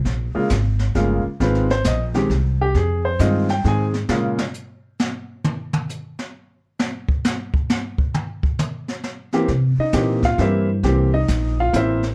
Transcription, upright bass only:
X:1
M:3/4
L:1/8
Q:"Swing" 1/4=134
K:Fm
V:1 name="Upright bass" clef=bass
B,,, z A,,,2 G,,, z | A,,,2 B,,,2 C,,2 | F,,2 G,,2 A,,2 | B,, z4 z |
z6 | z6 | z6 | C, z B,,2 G,,2 |
C,,2 B,,,2 =A,,,2 |]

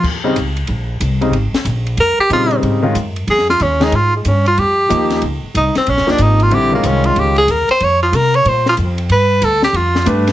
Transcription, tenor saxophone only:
X:1
M:4/4
L:1/16
Q:"Swing" 1/4=186
K:Ebmix
V:1 name="Tenor saxophone"
z16 | z8 B2 G2 F3 z | z8 A2 F2 D2 E2 | F2 A,2 D2 F2 G8 |
z4 E2 C2 D2 =D2 E2 F2 | G2 B,2 D2 F2 G2 A2 B2 c2 | d2 F2 B2 d2 c2 F2 z4 | =B4 =A2 G2 F4 z4 |]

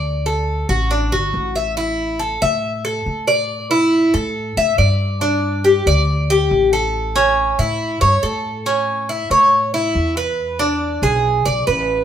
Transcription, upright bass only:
X:1
M:4/4
L:1/8
Q:1/4=139
K:Amix
V:1 name="Upright bass" clef=bass
D,,3 A,,,2 G,,, A,,,2- | A,,,3 A,,3 A,,2- | A,,3 A,,2 A,, G,,2- | G,,3 D,,3 A,,,2- |
A,,,3 A,,2 G,, A,,2- | A,,3 A,,3 E,,2- | E,,3 B,,,2 B,,, A,,,2 |]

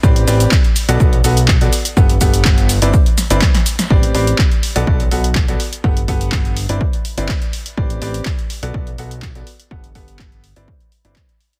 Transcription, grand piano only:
X:1
M:4/4
L:1/16
Q:1/4=124
K:Clyd
V:1 name="Grand piano"
[CGBd]2 [CGBd]2 z3 [B,FAd] z2 [B,FAf] z2 [B,FAd] z2 | [B,GAf] z [B,GAf]4 z [CEBd] z3 [CEBd] z4 | [CGBd]2 [CGBd]2 z3 [B,FAd] [B,FAd] z [B,FAf] z2 [B,FAd] z2 | [B,GAf] z [B,GAf]4 z [CEBd] z3 [CEBd] z4 |
[CGBd]2 [CGBd]2 z3 [B,FAd] [B,A] z [B,FAf] z2 [B,FAd] z2 | [B,GAf] z [B,GAf]4 z [CEBd] z3 [CEBd] z4 |]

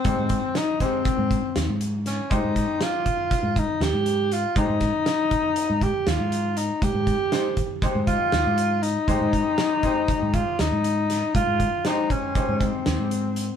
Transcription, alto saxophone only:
X:1
M:9/8
L:1/8
Q:3/8=80
K:Ab
V:1 name="Alto saxophone"
C2 E C4 z D | E2 F3 E G2 F | E4- E G F2 E | G4 z F3 E- |
E4- E F E3 | F2 E D2 C4 |]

